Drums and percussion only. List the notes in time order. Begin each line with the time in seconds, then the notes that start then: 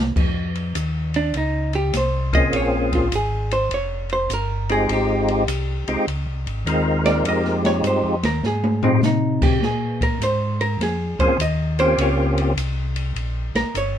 0.16 kick, crash
0.55 ride
0.75 hi-hat pedal, ride
1.14 ride
1.34 ride
1.73 ride
1.93 snare, hi-hat pedal, ride
2.33 kick, ride
2.53 ride
2.92 kick, ride
3.12 hi-hat pedal, ride
3.51 ride
3.71 ride
4.09 ride
4.30 hi-hat pedal, ride
4.69 ride
4.89 ride
5.28 ride
5.48 hi-hat pedal, ride
5.88 ride
6.08 ride
6.47 ride
6.67 hi-hat pedal, ride
7.05 snare, ride
7.25 ride
7.45 snare
7.65 snare, ride
7.84 hi-hat pedal, ride
8.23 snare, ride
8.43 snare
8.64 high tom
8.83 floor tom
9.03 snare, hi-hat pedal
9.42 kick, crash
9.62 snare
10.01 kick, ride
10.22 hi-hat pedal, ride
10.61 ride
10.81 snare, ride
11.19 kick, ride
11.40 hi-hat pedal, ride
11.79 ride
11.98 ride
12.38 ride
12.57 hi-hat pedal, ride
12.96 ride
13.16 ride
13.55 snare, ride
13.75 hi-hat pedal, ride